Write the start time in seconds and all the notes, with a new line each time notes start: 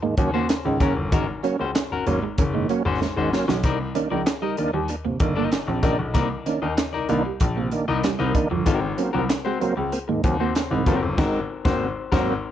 0.02 D#2 G#2 D#3 A#3, muted clean electric guitar stroke
0.17 D#2 F#3 A#3 C#4, muted clean electric guitar stroke, kick, closed hi-hat
0.34 A#3 C#4 F#4 C5
0.49 A#3 C#4, muted clean electric guitar stroke, snare, clap, closed hi-hat
0.65 C#2 G#2 D#3 C#4, muted clean electric guitar stroke
0.80 F#1 F#3 A#3 C#4 F#4 A#4, kick, closed hi-hat
0.96 G1, muted clean electric guitar stroke
1.12 G#1 G#2 D#3 G#3 C#4 F#4 A#4, kick, closed hi-hat
1.29 muted clean electric guitar stroke
1.43 F#3 A#3 C#4, muted clean electric guitar stroke, closed hi-hat
1.59 C#2 A#3 C#4 F#4 C5, muted clean electric guitar stroke
1.75 muted clean electric guitar stroke, snare, clap, closed hi-hat
1.91 G#1 C#4 F#4 A#4
2.06 G#1 F#3 A#3 C#4, closed hi-hat
2.22 G#3, muted clean electric guitar stroke
2.38 F#1 A#3 C#4, muted clean electric guitar stroke, kick, closed hi-hat
2.54 G#2 D#3 A#3, muted clean electric guitar stroke
2.69 F#3 A#3 C#4, closed hi-hat
2.85 G#1 C#4 F#4 C5
3.01 G#1 G#3 A#3 C#4, muted clean electric guitar stroke, snare
3.17 G#1 G#2 D#3 C#4 F#4 C5
3.33 F#3 A#3 C#4, muted clean electric guitar stroke, snare
3.48 B1 F#3, muted clean electric guitar stroke, snare
3.63 C2 C3 D#4 A#4 D5, kick, closed hi-hat
3.81 muted clean electric guitar stroke
3.95 D#3 A#3 C#4 D4, muted clean electric guitar stroke, closed hi-hat
4.10 C#2 F3 A#3 D4 D#4 A#4 D5
4.26 muted clean electric guitar stroke, snare, clap, closed hi-hat
4.42 G3 D#4 A#4 D#5
4.57 D#2 D#3 A#3 D4, muted clean electric guitar stroke, closed hi-hat
4.73 D#2 G3, muted clean electric guitar stroke
4.88 A#3 D4, muted clean electric guitar stroke, closed hi-hat
5.05 G1 C3 A#3, muted clean electric guitar stroke
5.20 G1 D#3 A#3 D4, muted clean electric guitar stroke, kick, closed hi-hat
5.36 A#3 D#4 A#4 D#5
5.52 muted clean electric guitar stroke, snare, clap, closed hi-hat
5.67 A#1 C4, muted clean electric guitar stroke
5.83 A#1 D#3 A#3 C#4 D4 D#4 A#4 D5, kick, closed hi-hat
5.99 B1, muted clean electric guitar stroke
6.14 C2 C3 A#3 D#4 A#4 D5, kick, closed hi-hat
6.46 D#3 A#3 C#4 D4, muted clean electric guitar stroke, closed hi-hat
6.62 D#2 A#3 D4 D#4 A#4 D#5, muted clean electric guitar stroke
6.78 muted clean electric guitar stroke, snare, clap, closed hi-hat
6.93 C2 D#4 A#4 D5
7.09 C2 D#3 A#3 D4, closed hi-hat
7.25 G3, muted clean electric guitar stroke
7.40 A#1 A#3 D4, muted clean electric guitar stroke, kick, closed hi-hat
7.56 C3 A#3, muted clean electric guitar stroke
7.71 D#3 A#3 D4, closed hi-hat
7.88 C2 D#4 A#4 D#5
8.03 C2 G3 A#3 D4, snare, clap, closed hi-hat
8.19 C2 C3 D#4 A#4 D#5
8.34 D#3 A#3 D4, muted clean electric guitar stroke, kick, closed hi-hat
8.50 G1 F3, muted clean electric guitar stroke
8.66 G#1 G#2 D#3 C4 F#4 A#4, kick, closed hi-hat
8.82 muted clean electric guitar stroke
8.97 F#3 A#3 C4 C#4, muted clean electric guitar stroke, closed hi-hat
9.13 C2 F#3 A#3 C4 F#4 A#4
9.29 muted clean electric guitar stroke, snare, clap, closed hi-hat
9.45 G#3 C4 F#4 C5
9.60 C#2 F#3 A#3 C4, muted clean electric guitar stroke, closed hi-hat
9.76 C#2 G#3, muted clean electric guitar stroke
9.92 A#3 C4, muted clean electric guitar stroke, closed hi-hat
10.08 D#2 G#2 D#3 A#3, muted clean electric guitar stroke
10.24 D#2 F#3 A#3 C4, muted clean electric guitar stroke, kick, closed hi-hat
10.40 A#3 C4 F#4 C5
10.55 A#3 C4, muted clean electric guitar stroke, snare, clap, closed hi-hat
10.71 C2 G#2 D#3 C4, muted clean electric guitar stroke
10.86 F#1 F#3 A#3 C4 C#4 F#4 A#4, kick, closed hi-hat
11.03 G1, muted clean electric guitar stroke
11.18 G#1 G#2 D#3 C4 F#4 A#4, kick, snare, crash
11.65 G#1 A#3 C4 F#4 C5, kick, snare
12.12 G#1 F#3 A#3 C4 F#4 A#4, kick, snare